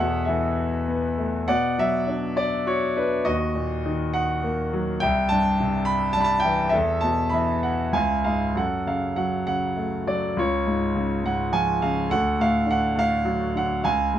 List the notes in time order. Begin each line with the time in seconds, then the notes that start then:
Already playing: E2 A4 E5 F#5
0.00 B2
0.25 E3 A4 E5
0.88 B3
1.18 A3
1.48 B2 D5 F#5
1.78 F#3 E5
2.07 D4
2.37 D5
2.67 F#4 C#5
2.96 D4 B4
3.25 D#2 F#4 D#5
3.55 A#2
3.85 D#3
4.14 F#5
4.44 A#3
4.73 F#3
5.00 C2 E5 G5
5.29 G2 A5
5.60 C3
5.85 B5
6.13 G3 A5
6.21 A5 B5
6.40 G5
6.45 E3
6.69 A4 E5
6.75 E2
7.01 B2 A5
7.29 E3 B5
7.34 E5
7.63 F#5
7.92 C#2 F5 G#5
8.24 G#2 F5
8.55 F#2 A4 F#5
8.86 C#3 F5
9.16 F#3 F#5
9.46 C#3 F#5
9.76 A3
10.07 F#3 D5
10.37 C#2 F4 C#5
10.67 G#2
10.96 C#3
11.24 G#2 F#5
11.52 F3 G#5
11.82 C#3 F5
12.10 D2 A4 F#5
12.39 A2 F5
12.66 D3
12.71 F#5
12.95 A2 F5
13.25 F#3
13.55 D3 F#5
13.84 C#2 F5 G#5
14.14 G#2